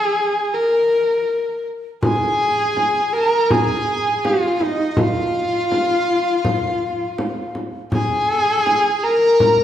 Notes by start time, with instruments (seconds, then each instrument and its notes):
0.00 horsehead fiddle G#4
0.54 horsehead fiddle A#4
2.03 horsehead fiddle G#4, dizi G#5, frame drum
2.40 frame drum
2.58 frame drum
2.77 frame drum
3.13 horsehead fiddle A#4, dizi A#5
3.51 horsehead fiddle G#4, dizi G#5, frame drum
4.25 horsehead fiddle F4, dizi F5, frame drum
4.61 horsehead fiddle D#4, dizi D#5, frame drum
4.97 horsehead fiddle F4, dizi F5, frame drum
5.35 frame drum
5.72 frame drum
6.45 frame drum
7.01 frame drum
7.18 frame drum
7.55 frame drum
7.92 horsehead fiddle G#4, dizi G#5, frame drum
8.29 frame drum
8.47 frame drum
8.66 frame drum
9.03 horsehead fiddle A#4, dizi A#5
9.40 frame drum